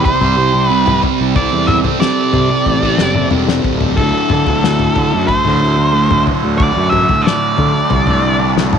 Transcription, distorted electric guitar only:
Already playing: C3
0.21 G3 C4
0.36 C3 G3 C4
0.53 muted distorted electric guitar stroke
0.69 C3 G3 C4
0.85 G3 C4
1.02 C3 G3 C4
1.35 C3 G3 C4
1.84 G3 C4
2.00 C3 G3 C4
2.32 C3 G3 C4
2.50 muted distorted electric guitar stroke
2.82 G3 C4
2.98 C3 G3 C4
3.15 muted distorted electric guitar stroke
3.31 C3 G3 C4
3.46 G3 C4
3.63 C3 G3 C4
3.96 D2 A2 D3
4.46 A2 D3
4.63 D2 A2 D3
4.96 D2 A2 D3
5.13 muted distorted electric guitar stroke
5.45 A2 D3
5.61 D2 A2 D3
5.78 muted distorted electric guitar stroke
5.93 D2 A2 D3
6.09 A2 D3
6.25 D2 A2 D3
6.59 D2 A2 D3
7.08 A2 D3
7.25 D2 A2 D3
7.57 D2 A2 D3
7.75 muted distorted electric guitar stroke
8.07 A2 D3
8.23 D2 A2 D3
8.40 muted distorted electric guitar stroke
8.56 D2 A2 D3
8.73 A2 D3

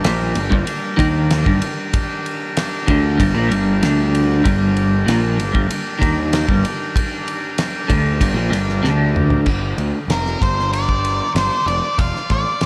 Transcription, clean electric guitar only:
0.05 A#2
0.37 G2
0.50 G2
0.66 muted clean electric guitar stroke
0.97 D#3
1.44 G2
2.87 D3
3.18 G2
3.35 A#2
3.48 G2
3.81 D3
4.44 G2
5.06 A#2
5.37 G2
5.53 G2
5.68 muted clean electric guitar stroke
5.99 D#3
6.47 G2
7.88 D3
8.21 G2
8.34 A#2
8.50 G2
8.83 D3

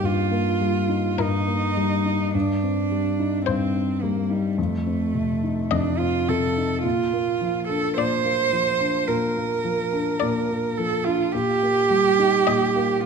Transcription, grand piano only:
Already playing: G2 G3 A#3 D#4
0.03 G2
0.31 A#3
0.61 G3
0.89 D#4
1.18 G2
1.48 A#3
1.77 G3
2.06 D#4
2.35 G2
2.63 C4
2.91 G3
3.19 D#4
3.48 G2
3.76 C4
4.03 G3
4.30 D#4
4.58 F2
4.87 C4
5.14 C3
5.44 D#4
5.71 F2
6.00 C4
6.29 C3
6.58 D#4
6.84 A#2
7.13 A#3
7.41 F3
7.70 D4
7.97 A#2
8.25 A#3
8.53 F3
8.80 D4
9.08 A#2
9.37 A#3
9.64 F3
9.93 D4
10.22 A#2
10.51 A#3
10.79 F3
11.06 D4
11.35 A#2
11.63 A#3
11.90 G3
12.19 D#4
12.48 A#2
12.76 A#3

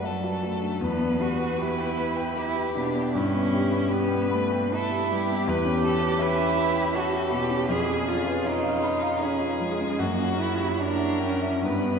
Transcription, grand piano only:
Already playing: F#2 D4 F#4 A4 D5 F#5 A5
0.04 D5
0.24 F#4
0.43 F#3
0.61 D4
0.81 E2
1.00 B3
1.19 G4
1.39 B4
1.58 G4
1.78 G5
1.97 B5
2.17 G5
2.36 B4
2.56 G4
2.77 B2
2.95 B3
3.15 G2
3.34 B3
3.53 G4
3.71 B4
3.90 G4
4.08 G5
4.31 B5
4.52 G5
4.72 B4
4.91 G4
5.11 G3
5.30 B3
5.48 E2
5.65 C#4
5.84 G4
6.01 B4
6.19 C#5
6.36 G5
6.57 B5
6.76 G5
6.94 C#5
7.13 G4
7.32 B2
7.51 C#4
7.69 F2
7.89 C#4
8.08 F4
8.26 B4
8.45 C#5
8.63 F5
8.83 B5
9.02 F5
9.21 C#5
9.40 F4
9.60 F3
9.81 C#4
9.99 F#2
10.20 C#4
10.37 E4
10.57 G4
10.77 C#5
10.98 E5
11.20 G5
11.42 E5
11.62 G2
11.84 B3

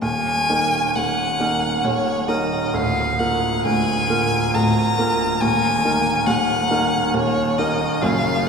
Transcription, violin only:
0.03 G#5
0.95 F#5
1.84 C#5
2.28 D#5
2.74 F5
3.19 F#5
3.65 G#5
4.54 A#5
5.41 G#5
6.26 F#5
7.14 C#5
7.58 D#5
8.02 F5

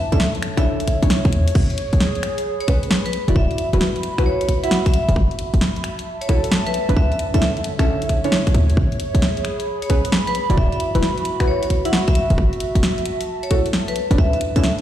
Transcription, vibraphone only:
0.12 E5
0.57 E5
2.60 C#5
3.06 B4
3.36 E5
3.51 E5
4.26 C#5
4.41 C#5
4.64 F#5
4.86 E5
4.94 E5
6.21 C#5
6.67 B4
6.96 E5
7.11 E5
7.34 E5
7.79 E5
9.82 C#5
10.27 B4
10.58 E5
10.72 E5
11.48 C#5
11.63 C#5
11.85 F#5
12.08 E5
12.15 E5
13.43 C#5
13.88 B4
14.18 E5
14.33 E5
14.56 E5

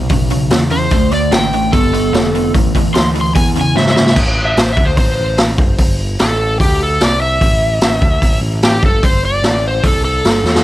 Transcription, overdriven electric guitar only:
0.10 E2 C#3
0.31 E2 C#3
0.51 E2 C#3
0.71 E2 C#3
0.92 D3 A3
1.12 D3 A3
1.32 D3 A3
1.54 D3 A3
1.73 D3 B3
1.93 D3 B3
2.13 D3 B3
2.35 D3 B3
2.54 A2 E3
2.75 A2 E3
2.94 A2 E3
3.14 A2 E3
3.35 E2 B2
3.56 E2 C#3
3.76 E2 C#3
3.97 E2 C#3

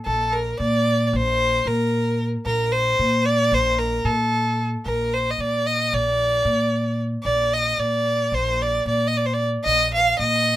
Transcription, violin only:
0.06 A4
0.33 A#4
0.60 D5
1.06 D5
1.16 C5
1.68 A#4
2.46 A#4
2.72 C5
3.25 D5
3.54 C5
3.79 A#4
4.05 A4
4.86 A#4
5.14 C5
5.31 D#5
5.40 D5
5.67 D#5
5.94 D5
7.23 D5
7.54 D#5
7.79 D5
8.34 C5
8.62 D5
8.88 D5
9.08 D#5
9.17 D5
9.26 C5
9.34 D5
9.64 D#5
9.94 F5
10.20 D#5

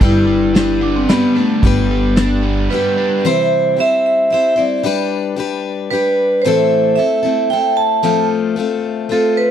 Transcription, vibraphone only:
0.05 E4
0.83 D4
0.96 C4
1.09 B3
1.36 A3
1.64 B3
2.70 B4
3.26 C5
3.80 E5
4.06 E5
4.33 E5
4.58 D5
5.91 B4
6.42 C5
6.96 E5
7.50 G5
7.77 A5
9.12 A4
9.37 B4

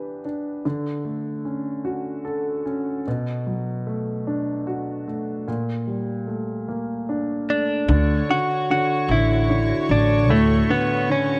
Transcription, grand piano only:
Already playing: E3 B3 D4 G4 B4
0.25 D4
0.65 D3
1.05 A3
1.45 C#4
1.85 F#4
2.25 A4
2.66 C#4
3.08 B2
3.47 F#3
3.87 A3
4.27 D4
4.67 F#4
5.07 A3
5.48 A#2
5.87 G3
6.27 A3
6.68 A#3
7.09 D4
7.50 A3
7.89 D3
8.30 D3
8.70 D3
9.12 D3
9.50 D3
9.90 D3
10.29 A2
10.70 D3
11.09 D3

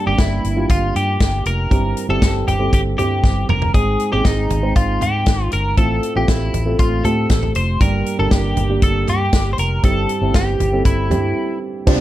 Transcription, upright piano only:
Already playing: G2 G3 A#3 D4 G4
0.06 G3 A#3 D4 G4
0.56 G3 A#3 D4 F4
1.71 G2 G3 C4 E4 G4
2.09 G3 C4 E4 G4
2.59 G3 C4 E4 A4
2.98 G3 C4 E4 G4
3.74 G#2 G#3 C4 D#4 G#4
4.12 G#3 C4 D#4 G#4
4.63 G#3 C4 D#4 C5
5.77 A2 A3 C4 F4 A4
6.15 A3 C4 F4 G4
6.66 A3 C4 F4 A4
7.04 A3 C4 F4 G4
7.80 G2 G3 A#3 D4 G4
8.19 G3 A#3 D4 A#4
8.70 G3 A#3 D4 G4
9.84 G2 G3 C4 E4 G4
10.21 G3 C4 E4 G4
10.73 G3 C4 E4 A4
11.10 G3 C4 E4 G4
11.87 C3 G3 C4 F4 G4 C5

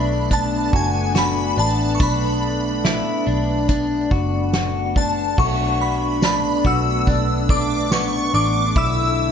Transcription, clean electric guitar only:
Already playing: D4
0.31 D4
0.73 F#4
1.15 F#4
1.58 D4
2.00 D4
2.85 E4
3.27 D4
3.69 D4
4.11 F#4
4.54 F#4
4.96 D4
5.38 F#4
6.23 D4
6.66 F#4
7.08 D4
7.50 D4
7.92 B3
8.34 D4
8.76 E4

